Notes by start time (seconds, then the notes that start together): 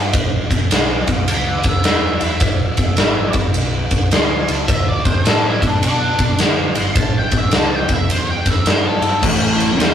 Already playing: G2 A4
0.13 E1, kick, ride
0.51 E1, kick, ride
0.71 B1, snare, ride
1.07 B1, kick, ride
1.28 C#2 G5 B5, ride
1.49 D5 F#5
1.64 C#2, kick, ride
1.69 E5
1.84 E2, snare, ride
2.21 E2, ride
2.40 E1, kick, ride
2.77 E1, kick, ride
2.97 G#1, snare, ride
3.33 G#1, kick, ride
3.54 B1, ride
3.91 B1, kick, ride
4.11 D2 C6, snare, ride
4.48 C#2 A5, ride
4.68 D2 E5, kick, ride
4.88 D5
5.05 D2 C5, kick, ride
5.25 A2 A4, snare, ride
5.46 E4
5.62 A2, kick, ride
5.67 D4
5.80 B2, ride
5.85 D4
6.19 B2, kick, ride
6.38 D3, snare, ride
6.75 G1 C6, ride
6.96 A1, kick, ride
7.00 A5
7.18 G5
7.31 A1, kick, ride
7.38 E5
7.51 C#2, snare, ride
7.57 A5
7.76 G5
7.89 C#2, kick, ride
7.94 E5
8.09 E2 C5, ride
8.30 G5
8.46 E2, kick, ride
8.50 E5
8.64 G2, snare, ride
8.68 C5
8.85 A4
9.01 G2, ride
9.22 A1 A2 E3 A3, kick, crash
9.60 ride
9.78 E2 E3 B3 E4 C5, snare, ride